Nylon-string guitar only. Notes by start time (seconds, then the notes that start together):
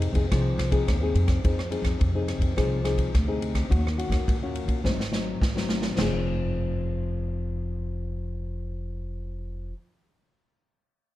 Already playing: C3 C4 D#4 G#4
0.15 C4 D#4 G#4
0.31 F3 C4 D#4 G#4
0.71 C4 D#4 G#4
0.87 C3
1.02 C4 D#4 G#4
1.44 F3 C4 D#4 G#4
1.70 C4 D#4 G#4
1.99 C3
2.15 C4 D#4 G#4
2.57 F3 C4 D#4 G#4
2.84 C4 D#4 G#4
3.12 C3
3.28 C4 D#4 G#4
3.70 D#3 A#3 C#4 F#4
3.97 A#3 C#4 F#4
4.27 A#2
4.42 A#3 C#4 F#4
4.84 G#2 F#3 C4 D#4
5.11 F#3 C4 D#4
5.40 D#3
5.55 F#3 C4 D#4
5.95 F3 C4 D#4
6.01 G#4